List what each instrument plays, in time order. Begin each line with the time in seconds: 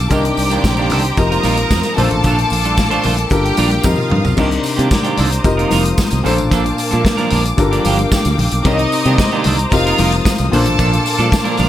Already playing: grand piano G3 D4 F4 A4 A#4, string section D6
0.09 fingered electric bass C2, grand piano C3 C4 D4 D#4 A#4, clean electric guitar D#3 A#3 D4 G4, violin section G4 G5, string section C5 D5 A#5, kick, closed hi-hat, tambourine, muted conga, low conga
0.24 muted clean electric guitar stroke, closed hi-hat, muted conga
0.37 fingered electric bass C2, muted clean electric guitar stroke, open hi-hat, tambourine
0.50 clean electric guitar D#3 A#3 D4 G4, closed hi-hat, tambourine, high conga
0.64 fingered electric bass A#1, muted clean electric guitar stroke, kick, snare, tambourine, high conga
0.77 clean electric guitar D#3 A#3 D4 G4, closed hi-hat, muted conga
0.89 fingered electric bass C2, clean electric guitar D#3 A#3 D4 A4, open hi-hat, tambourine, high conga, low conga
1.04 muted clean electric guitar stroke, closed hi-hat
1.17 fingered electric bass F1, grand piano F3 C4 D#4 G4 A#4, violin section A#4 A#5, string section F5 D#6, muted clean electric guitar stroke, kick, closed hi-hat, tambourine
1.31 clean electric guitar A#3 D#4 F4 A#4, closed hi-hat, muted conga
1.43 fingered electric bass A#1, clean electric guitar A#3 D#4 F4 A#4, open hi-hat, tambourine, high conga
1.57 muted clean electric guitar stroke, closed hi-hat
1.71 fingered electric bass F2, kick, snare, tambourine, muted conga, high conga
1.83 muted clean electric guitar stroke, closed hi-hat, tambourine, muted conga
1.96 fingered electric bass A#1, grand piano A#2 A#3 D4 A4 C5, clean electric guitar A3 D4 F4 A4, string section A#3 F5 A5 D6, violin section A4 A5, open hi-hat, low conga
2.11 fingered electric bass A1, muted clean electric guitar stroke, closed hi-hat
2.24 fingered electric bass A#1, clean electric guitar A3 D4 F4 A4, kick, closed hi-hat, tambourine, muted conga, low conga
2.38 muted clean electric guitar stroke, closed hi-hat, muted conga
2.50 fingered electric bass A#1, muted clean electric guitar stroke, open hi-hat, tambourine
2.64 clean electric guitar A3 D4 F4 A4, closed hi-hat, tambourine, high conga
2.77 fingered electric bass A1, muted clean electric guitar stroke, kick, snare, tambourine, muted conga, high conga
2.90 clean electric guitar A3 D4 F4 C5, closed hi-hat, muted conga
3.03 fingered electric bass A#1, clean electric guitar A3 D4 F4 C5, open hi-hat, tambourine, high conga, low conga
3.17 muted clean electric guitar stroke, closed hi-hat, tambourine
3.30 fingered electric bass G1, grand piano G3 D4 F4 A4 A#4, violin section G4 G5, string section F5 G5 D6, muted clean electric guitar stroke, kick, closed hi-hat, tambourine
3.44 muted clean electric guitar stroke, closed hi-hat
3.57 fingered electric bass A#1, clean electric guitar G3 D4 F4 A#4, open hi-hat, tambourine, high conga
3.71 muted clean electric guitar stroke, closed hi-hat, tambourine
3.83 fingered electric bass F2, grand piano F3 C4 D#4 G4 A#4, violin section F4 F5, string section D#6, muted clean electric guitar stroke, kick, high tom, tambourine, high conga
3.96 muted clean electric guitar stroke, mid tom, tambourine, muted conga
4.10 fingered electric bass G2, mid tom, low conga
4.24 fingered electric bass B1, muted clean electric guitar stroke, floor tom, tambourine
4.36 fingered electric bass C2, grand piano C3 C4 D4 D#4 A#4, clean electric guitar D#3 A#3 D4 G4, string section C5 D5 A#5 D6, kick, crash, tambourine
4.51 muted clean electric guitar stroke, closed hi-hat, muted conga
4.64 muted clean electric guitar stroke, open hi-hat, tambourine
4.76 fingered electric bass C3, clean electric guitar D#3 A#3 D4 G4, closed hi-hat, tambourine, high conga
4.91 kick, snare, tambourine, muted conga, high conga
5.03 clean electric guitar D#3 A#3 D4 G4, closed hi-hat, muted conga
5.17 fingered electric bass C2, clean electric guitar D#3 A#3 D4 A4, open hi-hat, tambourine, high conga, low conga
5.31 muted clean electric guitar stroke, closed hi-hat, tambourine
5.43 fingered electric bass F1, grand piano F3 C4 D#4 G4 A#4, string section F5 D#6, muted clean electric guitar stroke, kick, closed hi-hat, tambourine, muted conga
5.57 clean electric guitar A#3 D#4 F4 A#4, closed hi-hat
5.70 fingered electric bass F1, clean electric guitar A#3 D#4 F4 A#4, open hi-hat, tambourine, high conga
5.85 muted clean electric guitar stroke, closed hi-hat, tambourine
5.98 kick, snare, tambourine, high conga
6.10 fingered electric bass C2, muted clean electric guitar stroke, closed hi-hat, tambourine
6.23 fingered electric bass A#1, grand piano A#2 A#3 D4 A4 C5, clean electric guitar F3 A#3 D4 A4, string section A#3 F5 A5 D6, open hi-hat, low conga
6.38 fingered electric bass A1, muted clean electric guitar stroke, closed hi-hat, tambourine
6.51 fingered electric bass A#1, clean electric guitar F3 A#3 D4 A4, kick, closed hi-hat, tambourine
6.64 muted clean electric guitar stroke, closed hi-hat, muted conga
6.78 muted clean electric guitar stroke, open hi-hat, tambourine
6.91 fingered electric bass A#2, clean electric guitar F3 A#3 D4 A4, closed hi-hat, tambourine, high conga
7.04 muted clean electric guitar stroke, kick, snare, tambourine, muted conga, high conga
7.17 clean electric guitar F3 A#3 D4 A#4, closed hi-hat, muted conga
7.30 fingered electric bass A#1, clean electric guitar F3 A#3 D4 A#4, open hi-hat, tambourine, high conga, low conga
7.44 muted clean electric guitar stroke, closed hi-hat, tambourine
7.57 fingered electric bass G1, grand piano G3 D4 F4 A4 A#4, string section A#3 F5 G5, muted clean electric guitar stroke, kick, closed hi-hat, tambourine, muted conga
7.71 clean electric guitar F3 A#3 D4 G4, closed hi-hat
7.84 fingered electric bass G1, clean electric guitar F3 A#3 D4 G4, open hi-hat, tambourine, high conga
7.99 muted clean electric guitar stroke, closed hi-hat
8.12 muted clean electric guitar stroke, kick, snare, tambourine, high conga
8.25 fingered electric bass D2, muted clean electric guitar stroke, closed hi-hat, tambourine, muted conga
8.38 fingered electric bass A#1, open hi-hat, low conga
8.51 fingered electric bass B1, muted clean electric guitar stroke, closed hi-hat, tambourine
8.64 fingered electric bass C2, grand piano C3 C4 D#4 A#4 C#5, clean electric guitar D#3 A#3 D4 G4, violin section D#4 D#5, string section C5 D#5 A#5, kick, closed hi-hat, tambourine, muted conga
8.74 grand piano D#5
8.79 muted clean electric guitar stroke, closed hi-hat, muted conga
8.92 muted clean electric guitar stroke, open hi-hat, tambourine
9.05 fingered electric bass C3, clean electric guitar D#3 A#3 D4 G4, closed hi-hat, tambourine, high conga
9.18 kick, snare, tambourine, muted conga, high conga
9.31 clean electric guitar D#3 A#3 D4 G4, closed hi-hat
9.44 fingered electric bass C2, clean electric guitar D#3 A#3 D4 A4, open hi-hat, tambourine, high conga, low conga
9.59 muted clean electric guitar stroke, closed hi-hat, tambourine
9.71 fingered electric bass F1, grand piano F3 C4 D#4 G4 A#4, violin section F4 F5, string section F5 D#6, muted clean electric guitar stroke, kick, closed hi-hat, tambourine
9.86 clean electric guitar A#3 D#4 F4 A#4, closed hi-hat
9.98 fingered electric bass F1, clean electric guitar A#3 D#4 F4 A#4, open hi-hat, tambourine, high conga
10.12 muted clean electric guitar stroke, closed hi-hat, tambourine
10.25 kick, snare, tambourine, muted conga, high conga
10.38 fingered electric bass C2, muted clean electric guitar stroke, closed hi-hat, tambourine, muted conga
10.51 fingered electric bass A#1, grand piano A#2 A#3 D4 A4 C5, clean electric guitar F3 A#3 D4 A4, string section A#3 F5 A5 D6, violin section A4 A5, open hi-hat, low conga
10.65 fingered electric bass A1, muted clean electric guitar stroke, closed hi-hat
10.78 fingered electric bass A#1, clean electric guitar F3 A#3 D4 A4, kick, closed hi-hat, tambourine, muted conga
10.92 muted clean electric guitar stroke, closed hi-hat
11.06 muted clean electric guitar stroke, open hi-hat, tambourine
11.18 fingered electric bass A#2, clean electric guitar F3 A#3 D4 A4, closed hi-hat, tambourine, high conga
11.31 muted clean electric guitar stroke, kick, snare, tambourine, high conga
11.44 clean electric guitar F3 A#3 D4 A#4, closed hi-hat, muted conga
11.57 fingered electric bass A#1, clean electric guitar F3 A#3 D4 A#4, open hi-hat, tambourine, high conga, low conga